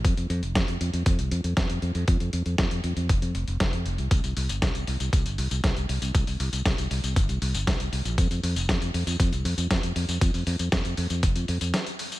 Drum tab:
HH |xxxxxxxxxxxxxxxx|xxxxxxxxxxxxxxxx|xxoxxxoxxxoxxxox|xooxxxoxxxoxxxox|
TB |----------------|----------------|xx-xxx-xxx-xxx-x|xx-xxx-xxx-xxx-x|
SD |----o-------o---|----o-------o---|----o-------o---|----o-------o---|
BD |o---o---o---o---|o---o---o---o---|o---o---o---o---|o---o---o---o---|

HH |xxoxxxoxxxoxxxox|xooxxxoxxxoxxxox|
TB |xx-xxx-xxx-xxx-x|xx-xxx-xxx-xxx-x|
SD |----o-------o---|----o-------o---|
BD |o---o---o---o---|o---o---o-------|